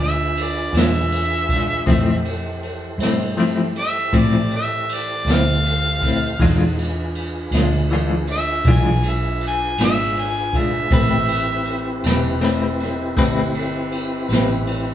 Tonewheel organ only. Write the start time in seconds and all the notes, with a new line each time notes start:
Already playing: D4 F4 G#4 B4
1.88 E3 G4 A4 C5
6.42 D#4 F#4 A4 C5
6.78 D4 F4 G#4 B4
10.93 C4 E4 G4 B4